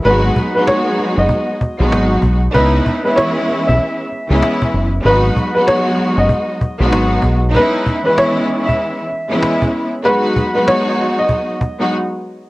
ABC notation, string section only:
X:1
M:4/4
L:1/16
Q:"Swing 16ths" 1/4=96
K:C#m
V:1 name="String section"
[F,G,B,DF]3 [F,G,B,DF]6 z2 [F,G,B,DF]4 z | [G,B,CDE]3 [E,G,B,CE]6 z2 [E,G,B,CE]4 z | [F,G,B,DF]3 [F,G,B,DF]6 z2 [F,G,B,DF]4 z | [G,B,CDE]3 [E,G,B,CE]6 z2 [E,G,B,CE]4 z |
[F,G,B,DF]3 [F,G,B,DF]6 z2 [F,G,B,DF] z4 |]